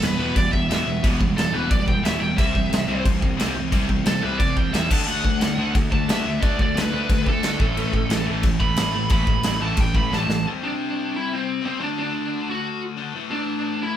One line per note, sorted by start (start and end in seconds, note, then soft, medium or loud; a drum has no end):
0.00 0.18 E1 medium
0.00 0.20 E2 medium
0.00 0.17 E2 medium
0.00 0.18 B2 medium
0.00 0.17 B2 medium
0.00 0.18 E3 medium
0.00 0.17 E3 medium
0.00 0.18 G3 medium
0.00 0.36 B4 medium
0.00 snare loud
0.00 crash medium
0.18 0.35 E1 medium
0.18 0.34 E2 medium
0.18 0.35 B2 loud
0.18 0.35 E3 loud
0.18 0.35 G3 medium
0.18 0.35 B3 loud
0.35 0.52 E1 medium
0.35 0.51 E2 medium
0.35 0.51 B2 medium
0.35 0.51 E3 medium
0.35 0.51 G3 medium
0.35 0.52 D5 medium
0.35 kick loud
0.35 crash medium
0.52 0.69 E1 medium
0.52 0.68 E2 medium
0.52 0.68 B2 medium
0.52 0.68 E3 medium
0.52 0.68 G3 medium
0.52 0.68 E5 medium
0.52 kick medium
0.69 0.85 E1 medium
0.69 0.84 E2 medium
0.69 0.85 B2 loud
0.69 0.86 E3 medium
0.69 0.85 G3 loud
0.69 0.86 B3 loud
0.69 1.02 E5 loud
0.69 snare loud
0.69 crash medium
0.86 1.02 E1 loud
0.86 1.01 E2 medium
0.86 1.01 B2 medium
0.86 1.01 E3 medium
0.86 1.01 G3 medium
1.03 1.20 E1 medium
1.03 1.18 E2 medium
1.03 1.18 B2 loud
1.03 1.19 E3 medium
1.03 1.18 G3 medium
1.03 1.19 B3 loud
1.03 kick loud
1.03 crash medium
1.19 1.36 E1 medium
1.19 1.34 E2 medium
1.19 1.35 B2 medium
1.19 1.35 E3 medium
1.19 1.35 G3 medium
1.19 kick medium
1.36 1.53 E1 medium
1.36 1.52 E2 medium
1.36 1.52 B2 medium
1.36 1.51 E3 medium
1.36 1.52 G3 medium
1.36 1.53 A4 medium
1.36 snare loud
1.36 crash medium
1.53 1.70 E1 medium
1.53 1.69 E2 medium
1.53 1.69 B2 medium
1.53 1.70 E3 medium
1.53 1.68 G3 medium
1.53 1.69 B3 loud
1.53 1.70 B4 medium
1.70 2.03 E1 medium
1.70 1.85 E2 medium
1.70 1.86 B2 medium
1.70 1.85 E3 medium
1.70 1.85 G3 medium
1.70 1.87 D5 medium
1.70 kick loud
1.70 crash medium
1.87 2.02 E2 medium
1.87 2.02 B2 medium
1.87 2.01 E3 medium
1.87 2.02 G3 medium
1.87 2.04 G5 medium
1.87 kick medium
2.03 2.19 E1 medium
2.03 2.20 E2 medium
2.03 2.20 B2 medium
2.03 2.20 E3 loud
2.03 2.19 G3 medium
2.03 2.20 B3 loud
2.03 2.20 E5 medium
2.03 snare loud
2.03 crash medium
2.20 2.37 E1 medium
2.20 2.36 E2 medium
2.20 2.36 B2 medium
2.20 2.36 E3 medium
2.20 2.36 G3 medium
2.20 2.37 G5 loud
2.37 2.54 C2 loud
2.37 2.52 C3 medium
2.37 2.53 E3 medium
2.37 2.53 G3 medium
2.37 2.54 C4 medium
2.37 3.03 E5 loud
2.37 kick loud
2.37 crash medium
2.53 2.70 C2 medium
2.53 2.68 C3 medium
2.53 2.70 E3 medium
2.53 2.69 G3 medium
2.53 kick medium
2.70 2.87 C2 medium
2.70 2.86 C3 medium
2.70 2.87 E3 medium
2.70 2.86 G3 medium
2.70 crash medium
2.74 snare loud
2.87 3.04 C2 medium
2.87 3.02 C3 medium
2.87 3.04 E3 loud
2.87 3.03 G3 loud
2.87 3.04 C4 loud
3.03 3.21 C2 medium
3.03 3.19 C3 medium
3.03 3.20 E3 medium
3.03 3.18 G3 medium
3.03 kick loud
3.03 crash medium
3.20 3.38 C2 medium
3.20 3.36 C3 medium
3.20 3.37 E3 medium
3.20 3.36 G3 medium
3.20 kick medium
3.37 3.55 C2 medium
3.37 3.53 C3 loud
3.37 3.54 E3 loud
3.37 3.54 G3 loud
3.37 3.54 C4 medium
3.37 crash medium
3.41 snare loud
3.54 3.72 C2 medium
3.54 3.69 C3 medium
3.54 3.71 E3 medium
3.54 3.70 G3 medium
3.71 3.89 C2 loud
3.71 3.86 C3 medium
3.71 3.88 E3 medium
3.71 3.86 G3 loud
3.71 3.88 C4 medium
3.71 kick loud
3.71 crash medium
3.87 4.05 C2 medium
3.87 4.03 C3 medium
3.87 4.05 E3 medium
3.87 4.03 G3 medium
3.87 kick medium
4.04 4.22 C2 medium
4.04 4.20 C3 medium
4.04 4.22 E3 medium
4.04 4.20 G3 medium
4.04 4.23 A4 loud
4.04 snare loud
4.04 crash medium
4.23 4.39 C2 medium
4.23 4.37 C3 medium
4.23 4.38 E3 loud
4.23 4.38 G3 loud
4.23 4.39 C4 loud
4.23 4.39 B4 medium
4.38 4.72 C2 medium
4.38 4.54 C3 medium
4.38 4.54 E3 medium
4.38 4.55 G3 medium
4.38 4.55 D5 medium
4.38 kick loud
4.38 crash medium
4.57 4.72 C3 medium
4.57 4.72 E3 medium
4.57 4.72 G3 medium
4.57 4.73 G5 loud
4.57 kick medium
4.73 4.90 E2 medium
4.73 4.89 C3 medium
4.73 4.89 E3 medium
4.73 4.89 G3 loud
4.73 4.89 C4 medium
4.73 4.89 E5 loud
4.73 snare loud
4.73 crash medium
4.90 5.07 D2 medium
4.90 5.06 D3 medium
4.90 5.06 A3 medium
4.90 5.06 D4 loud
4.90 5.06 A5 medium
4.90 kick loud
4.90 crash loud
5.07 5.24 D2 loud
5.07 5.23 D3 medium
5.07 5.23 A3 medium
5.07 5.23 D4 medium
5.07 5.72 F#5 loud
5.07 crash medium
5.25 5.40 D2 medium
5.25 5.39 D3 medium
5.25 5.40 A3 medium
5.25 kick medium
5.41 5.58 D2 medium
5.41 5.56 D3 medium
5.41 5.57 A3 medium
5.41 5.89 D4 medium
5.41 snare loud
5.41 crash medium
5.58 5.74 D2 medium
5.58 5.74 D3 loud
5.58 5.74 A3 medium
5.58 5.74 D4 loud
5.75 5.91 D2 medium
5.75 5.90 D3 medium
5.75 5.90 A3 medium
5.75 kick loud
5.75 crash medium
5.90 6.08 D2 medium
5.90 6.06 D3 medium
5.90 6.06 A3 medium
5.90 6.23 D4 medium
5.90 6.08 A5 medium
5.90 kick medium
6.09 6.25 D2 medium
6.09 6.24 D3 medium
6.09 6.24 A3 medium
6.09 6.25 D4 medium
6.09 6.43 E5 medium
6.09 snare loud
6.09 crash medium
6.26 6.42 D2 medium
6.26 6.40 D3 medium
6.26 6.40 A3 medium
6.26 6.75 D4 medium
6.42 6.59 D2 loud
6.42 6.57 D3 medium
6.42 6.58 A3 medium
6.42 6.58 D4 loud
6.42 6.58 D5 loud
6.42 kick loud
6.42 crash medium
6.59 6.75 D2 medium
6.59 6.74 D3 medium
6.59 6.74 A3 medium
6.59 6.77 D5 medium
6.59 kick medium
6.76 6.92 D2 medium
6.76 6.91 D3 medium
6.76 6.91 A3 medium
6.76 7.23 D4 medium
6.76 7.25 B4 loud
6.76 snare loud
6.76 crash medium
6.93 7.09 D2 medium
6.93 7.08 D3 medium
6.93 7.08 A3 loud
6.93 7.09 D4 loud
7.09 7.42 D2 medium
7.09 7.24 D3 medium
7.09 7.24 A3 medium
7.09 kick loud
7.09 crash medium
7.25 7.41 D3 medium
7.25 7.41 A3 medium
7.25 7.58 D4 medium
7.25 8.25 A4 loud
7.25 kick medium
7.43 7.59 D2 medium
7.43 7.58 D3 medium
7.43 7.58 A3 medium
7.43 7.58 D4 loud
7.43 snare loud
7.43 crash medium
7.59 7.76 A1 medium
7.59 7.73 A2 medium
7.59 7.74 E3 loud
7.59 7.74 A3 medium
7.59 kick loud
7.74 7.93 A1 loud
7.74 7.91 A2 medium
7.74 7.91 E3 loud
7.74 7.91 A3 loud
7.74 crash medium
7.93 8.09 A1 loud
7.93 8.08 A2 medium
7.93 8.08 E3 medium
7.93 kick medium
8.10 8.27 A1 medium
8.10 8.25 A2 medium
8.10 8.25 E3 medium
8.10 8.57 A3 medium
8.10 snare loud
8.10 crash medium
8.26 8.43 A1 medium
8.26 8.42 A2 medium
8.26 8.42 E3 loud
8.26 8.42 A3 loud
8.43 8.60 A1 loud
8.43 8.58 A2 medium
8.43 8.59 E3 medium
8.43 kick loud
8.43 crash medium
8.58 8.76 A1 medium
8.58 8.75 A2 medium
8.58 8.75 E3 medium
8.58 8.92 A3 medium
8.58 9.09 B5 loud
8.58 kick medium
8.76 8.94 A1 medium
8.76 8.93 A2 medium
8.76 8.93 E3 loud
8.76 8.93 A3 loud
8.76 snare loud
8.76 crash medium
8.94 9.10 A1 loud
8.94 9.09 A2 medium
8.94 9.09 E3 medium
8.94 9.43 A3 loud
9.10 9.26 A1 loud
9.10 9.26 A2 medium
9.10 9.26 E3 medium
9.10 9.26 A3 loud
9.10 9.60 B5 loud
9.10 kick loud
9.10 crash medium
9.27 9.43 A1 loud
9.27 9.43 A2 medium
9.27 9.43 E3 medium
9.27 kick loud
9.43 9.60 A1 loud
9.43 9.60 A2 medium
9.43 9.59 E3 medium
9.43 9.92 A3 medium
9.43 snare loud
9.43 crash medium
9.61 9.77 A1 medium
9.61 9.76 A2 loud
9.61 9.77 E3 loud
9.61 9.77 A3 loud
9.61 9.80 A5 loud
9.77 10.10 A1 medium
9.77 9.93 A2 medium
9.77 9.93 E3 loud
9.77 9.95 G5 medium
9.77 kick loud
9.77 crash medium
9.94 10.10 A2 medium
9.94 10.10 E3 medium
9.94 10.26 A3 medium
9.94 10.11 B5 loud
9.94 kick medium
10.12 10.27 A1 medium
10.12 10.27 A2 medium
10.12 10.28 E3 loud
10.12 10.28 A3 loud
10.12 10.45 A5 loud
10.12 snare medium
10.28 10.44 A1 loud
10.28 10.44 A2 medium
10.28 10.44 E3 medium
10.28 snare medium
10.45 11.61 C3 medium
10.45 11.61 G3 loud
10.45 11.60 C4 loud
10.64 11.14 D4 medium
11.16 11.31 E4 medium
11.33 11.65 C4 medium
11.61 11.78 C3 medium
11.61 11.78 G3 medium
11.61 11.77 C4 medium
11.66 11.80 C4 loud
11.79 12.95 D3 medium
11.79 12.96 A3 loud
11.79 11.97 D4 loud
11.79 12.95 D4 loud
11.99 12.49 D4 loud
12.50 12.79 F#4 loud
12.97 13.13 D3 medium
12.97 13.13 A3 medium
12.97 13.12 D4 medium
13.14 13.97 A2 medium
13.14 13.97 E3 loud
13.14 13.97 A3 loud
13.31 13.82 D4 medium
13.83 13.97 E4 medium